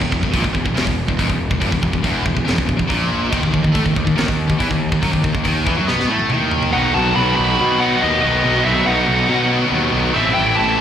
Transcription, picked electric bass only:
0.02 0.12 E1 medium
0.13 0.22 E1 medium
0.24 0.33 E1 medium
0.34 0.44 A#1 medium
0.45 0.54 E1 medium
0.55 0.65 E1 medium
0.66 0.75 E1 medium
0.76 0.86 E1 medium
0.87 1.07 E1 medium
1.09 1.18 E1 medium
1.19 1.29 F1 medium
1.30 1.49 E1 medium
1.51 1.61 E1 medium
1.62 1.71 G1 loud
1.73 1.82 E1 medium
1.83 1.93 E1 medium
1.93 2.03 E1 medium
2.05 2.24 E1 medium
2.26 2.35 E1 medium
2.37 2.46 E1 medium
2.46 2.56 F1 medium
2.58 2.68 E1 medium
2.69 2.79 E1 medium
2.80 2.89 E1 medium
2.91 3.30 A#1 medium
3.33 3.43 D#2 medium
3.44 3.53 D#2 medium
3.54 3.63 D#2 medium
3.65 3.74 D#2 medium
3.75 3.85 A2 medium
3.86 3.96 D#2 medium
3.97 4.06 D#2 medium
4.07 4.17 D#2 medium
4.17 4.27 D#2 medium
4.29 4.48 D#2 medium
4.50 4.60 D#2 medium
4.60 4.70 E2 loud
4.71 4.91 D#2 medium
4.92 5.02 D#2 medium
5.03 5.12 F#2 loud
5.13 5.23 D#2 medium
5.24 5.34 D#2 medium
5.35 5.45 D#2 medium
5.45 5.65 D#2 medium
5.67 5.77 E2 medium
5.79 5.88 F#2 medium
5.90 6.09 B2 medium
6.11 6.30 A2 loud
6.31 6.71 D#2 medium
6.76 6.92 B1 loud
6.95 7.12 B1 medium
7.17 7.34 B1 medium
7.39 7.56 B1 medium
7.61 7.94 B2 loud
8.04 8.20 D#2 medium
8.24 8.41 B1 medium
8.44 8.61 B1 medium
8.66 8.83 B1 medium
8.87 9.04 B1 loud
9.08 9.25 B1 loud
9.29 9.64 B2 loud
9.72 9.89 D#2 medium
9.93 10.11 B1 medium
10.16 10.33 A1 loud
10.38 10.54 A1 medium
10.59 10.76 A1 medium

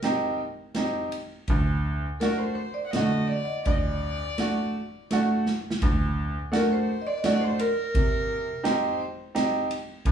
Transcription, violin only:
0.00 0.38 A#4 medium
2.20 2.40 A#4 medium
2.39 2.85 C5 medium
2.86 2.92 F#5 medium
2.91 3.29 D#5 medium
3.28 3.64 D5 medium
3.64 3.73 D5 medium
3.71 3.79 D#5 medium
3.78 5.09 D5 loud
6.53 6.69 A#4 medium
6.72 7.08 C5 medium
7.07 7.24 D5 medium
7.26 7.46 D5 medium
7.44 7.61 C5 medium
7.60 8.67 A#4 loud
8.65 8.73 C5 medium
8.71 8.80 A#4 medium
8.78 9.01 C5 medium

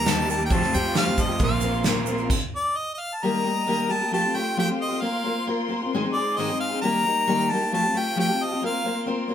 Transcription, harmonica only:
0.00 0.09 A#5 loud
0.09 0.27 A5 loud
0.31 0.45 A5 loud
0.46 0.55 G5 medium
0.53 0.77 A5 medium
0.75 0.97 G5 medium
0.98 1.22 F5 medium
1.21 1.43 D#5 medium
1.44 1.85 F5 medium
2.55 2.78 D5 medium
2.77 2.94 D#5 medium
2.94 3.01 D#5 medium
3.00 3.17 F5 medium
3.15 3.25 A5 medium
3.23 3.94 A#5 loud
3.92 4.13 A5 loud
4.14 4.38 A5 loud
4.36 4.58 G5 medium
4.60 4.69 G5 medium
4.81 5.03 D#5 medium
5.01 5.47 F5 medium
6.13 6.38 D5 medium
6.37 6.59 D#5 medium
6.60 6.81 F5 medium
6.82 7.51 A#5 loud
7.50 7.72 A5 loud
7.74 8.00 A5 loud
7.98 8.19 G5 medium
8.20 8.45 G5 loud
8.44 8.64 D#5 medium
8.66 9.06 F5 medium

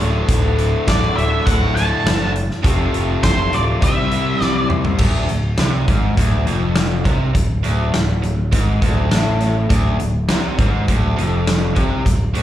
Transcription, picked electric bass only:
0.00 0.22 D1 medium
0.29 0.73 D1 medium
0.88 1.10 D1 medium
1.16 1.39 D1 medium
1.47 1.91 D1 loud
2.04 2.49 F#1 medium
2.64 2.86 F1 medium
2.93 3.15 F1 medium
3.24 3.46 F1 medium
3.52 3.74 D1 medium
3.83 4.05 C2 loud
4.11 4.33 C2 medium
4.41 4.85 C2 medium
4.99 5.27 D1 medium
5.28 5.56 D1 medium
5.58 5.86 C2 medium
5.88 6.16 G#1 medium
6.18 6.45 D1 loud
6.47 7.02 F1 medium
7.06 7.33 C2 loud
7.35 7.62 D1 medium
7.64 7.92 D1 medium
7.94 8.21 D1 medium
8.23 8.51 D1 medium
8.53 8.80 G#1 loud
8.83 9.09 D1 medium
9.10 9.66 A1 medium
9.70 9.98 D1 loud
10.28 10.56 C2 loud
10.59 10.87 G#1 loud
10.89 11.16 D1 loud
11.17 11.72 F1 medium
11.77 12.04 C2 medium
12.06 12.33 D1 medium
12.35 12.43 D1 medium

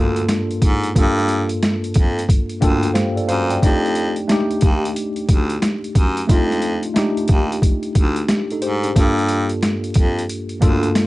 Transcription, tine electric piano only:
0.00 0.95 G2 medium
0.00 0.96 A#3 medium
0.00 0.97 D4 medium
0.00 0.98 F4 medium
0.00 2.94 G4 medium
0.00 0.99 A4 loud
0.95 1.96 G2 medium
0.95 1.97 A#3 medium
0.95 1.97 D4 medium
0.95 1.98 F4 medium
0.99 1.98 A4 loud
2.60 3.39 G2 medium
2.60 3.40 A#3 medium
2.60 3.40 D4 medium
2.60 3.41 F4 medium
2.60 2.93 G5 medium
2.64 2.96 A4 loud
2.94 3.15 G4 medium
2.94 3.15 C5 medium
2.94 3.14 F5 medium
3.16 3.28 A4 medium
3.16 3.28 D5 medium
3.28 3.49 C5 medium
3.28 3.49 F5 medium
3.50 3.82 D5 medium
3.50 3.82 G5 medium
3.62 4.17 A3 medium
3.62 4.18 D4 medium
3.62 4.18 D#4 medium
3.67 4.19 G4 medium
4.28 5.29 A3 medium
4.28 5.30 D4 medium
4.28 5.31 D#4 medium
4.32 5.32 G4 loud
6.27 6.83 A3 medium
6.27 6.83 D4 medium
6.27 6.84 D#4 medium
6.31 6.85 F4 medium
6.94 7.96 A3 medium
6.94 7.96 D4 medium
6.94 7.96 D#4 medium
6.98 7.97 G4 loud
8.28 8.49 D4 medium
8.28 8.49 G4 medium
8.52 8.63 D#4 medium
8.52 8.63 A4 medium
8.62 8.82 G4 medium
8.62 8.82 C5 medium
8.84 8.96 D4 medium
8.84 9.15 G4 medium
8.95 9.97 G2 medium
8.95 9.97 A#3 medium
8.95 9.98 D4 medium
8.95 9.98 F4 medium
8.99 9.99 A4 medium
10.60 11.07 G2 medium
10.60 11.07 A#3 medium
10.60 11.07 D4 medium
10.60 11.07 F4 medium
10.64 11.07 A4 loud

